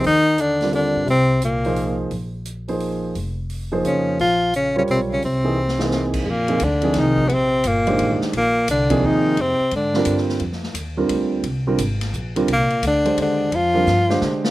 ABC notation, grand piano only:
X:1
M:3/4
L:1/8
Q:"Swing" 1/4=174
K:Cphr
V:1 name="Grand piano"
z3 [G,CFB=d]3 | z3 [F,B,EAc]3 | z3 [F,B,EAc]3 | z3 [F,B,EAc]3 |
z3 [G,FBcd]3 | z [=E,B,C^D^G] z [E,B,CDG]3 | [K:Fdor] z [C,F,B,EA] z [C,F,B,EA]3 | z3 [E,A,DGc]3 |
z3 [C,F,B,EA]3 | z3 [D,G,CFB]3 | z3 [D,G,CFB]3 | z [D,G,CFB] z3 [D,G,CFB] |
z3 [D,A,DGc]3 | z [D,G,CFB] z [D,A,DGc]3 |]